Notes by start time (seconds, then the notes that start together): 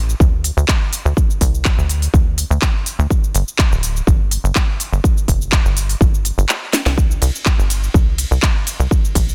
Already playing: A1
0.09 shaker
0.20 D2, kick, shaker
0.44 open hi-hat, shaker
0.57 D2, shaker
0.68 kick, clap, shaker
0.93 open hi-hat, shaker
1.05 D2, shaker
1.17 kick, shaker
1.30 shaker
1.41 C2, kick, open hi-hat, shaker
1.55 shaker
1.65 kick, clap, shaker
1.78 D2, shaker
1.89 open hi-hat, shaker
2.02 open hi-hat, shaker
2.14 D2, kick, shaker
2.38 open hi-hat, shaker
2.50 D2, shaker
2.62 kick, clap, shaker
2.86 open hi-hat, shaker
2.99 D2, shaker
3.10 kick, shaker
3.24 shaker
3.35 G1, open hi-hat, shaker
3.48 shaker
3.59 kick, clap, shaker
3.72 D1, shaker
3.83 open hi-hat, shaker
3.96 shaker
4.07 G1, kick, shaker
4.31 open hi-hat, shaker
4.44 G1, shaker
4.55 kick, clap, shaker
4.80 open hi-hat, shaker
4.92 G1, shaker
5.04 kick, shaker
5.18 shaker
5.28 F1, kick, open hi-hat, shaker
5.42 shaker
5.52 kick, clap, shaker
5.65 G1, shaker
5.77 open hi-hat, shaker
5.89 open hi-hat, shaker
6.01 G1, kick, shaker
6.14 shaker
6.25 open hi-hat, shaker
6.38 G1, shaker
6.49 clap, shaker
6.73 snare, open hi-hat, shaker
6.86 C2, snare, shaker
6.98 kick, shaker
7.11 shaker
7.22 C2, open hi-hat, ride, shaker
7.35 shaker
7.46 kick, clap, shaker
7.58 G1, shaker
7.70 open hi-hat, ride, shaker
7.84 shaker
7.94 C2, kick, shaker
8.18 open hi-hat, ride, shaker
8.31 C2, shaker
8.42 kick, clap, shaker
8.67 open hi-hat, ride, shaker
8.80 C2, shaker
8.91 kick, shaker
9.05 shaker
9.15 A#1, kick, open hi-hat, ride, shaker
9.29 shaker